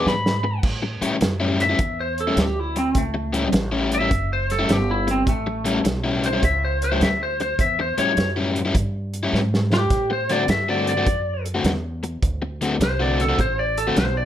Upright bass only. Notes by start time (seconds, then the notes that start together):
0.06 G#2
0.63 A2
1.02 muted upright bass stroke
1.21 F#2
1.79 E2
2.37 D2
2.95 C#2
3.53 A1
4.11 F#1
4.69 G1
5.27 A1
5.85 B1
6.43 C#2
7.00 D2
7.59 E2
7.98 muted upright bass stroke
8.17 F#2
8.75 G2
9.33 G#2
9.90 A2
10.48 G2
11.07 F#2
11.64 E2
12.22 D2
12.80 C2
13.39 A1
13.97 B1